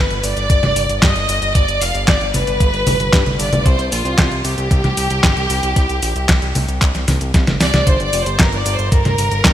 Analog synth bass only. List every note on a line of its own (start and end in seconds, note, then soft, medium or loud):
0.10 0.22 G1 medium
0.24 0.35 G1 medium
0.37 0.48 G1 medium
0.50 0.61 G1 loud
0.63 0.74 G1 medium
0.76 0.87 G1 loud
0.89 1.00 G1 medium
1.02 1.14 G2 loud
1.16 1.27 G1 medium
1.29 1.40 G1 loud
1.42 1.53 G1 medium
1.55 1.66 G1 loud
1.68 1.79 G1 medium
1.81 1.93 F1 loud
1.95 2.06 G1 medium
2.08 2.19 G1 loud
2.21 2.32 G1 medium
2.34 2.45 G1 medium
2.47 2.58 G1 medium
2.60 2.72 G1 loud
2.74 2.85 G1 medium
2.87 2.98 G1 medium
3.00 3.11 G1 medium
3.13 3.24 G2 loud
3.26 3.37 G1 medium
3.39 3.50 G1 loud
3.52 3.64 G1 medium
3.66 3.77 C2 loud
3.79 3.90 C2 medium
3.92 4.03 A#1 medium
4.05 4.16 C2 medium
4.18 4.29 C2 loud
4.31 4.43 C2 medium
4.45 4.56 C2 loud
4.58 4.69 C2 medium
4.71 4.82 C2 loud
4.84 4.95 C2 medium
4.97 5.08 C2 medium
5.10 5.22 C2 medium
5.24 5.35 G1 loud
5.37 5.48 C2 medium
5.50 5.61 C2 loud
5.63 5.74 C2 medium
5.76 5.87 C2 loud
5.89 6.01 C2 medium
6.03 6.14 A#1 loud
6.16 6.27 C2 medium
6.29 6.40 C2 loud
6.42 6.53 C2 medium
6.55 6.66 C2 medium
6.68 6.79 C2 medium
6.82 6.93 C2 loud
6.95 7.06 C2 medium
7.08 7.19 C2 medium
7.21 7.32 C2 medium
7.34 7.45 C2 loud
7.47 7.58 G1 medium
7.60 7.72 C2 loud
7.74 7.85 C2 medium
7.87 7.98 G1 loud
8.00 8.11 G1 medium
8.13 8.24 F1 loud
8.26 8.37 G1 medium
8.39 8.50 G1 loud
8.53 8.64 G1 medium
8.66 8.77 G1 loud
8.79 8.90 G1 medium
8.92 9.03 G1 loud
9.05 9.16 G1 medium
9.18 9.29 G1 medium
9.31 9.43 G1 medium
9.45 9.53 G2 loud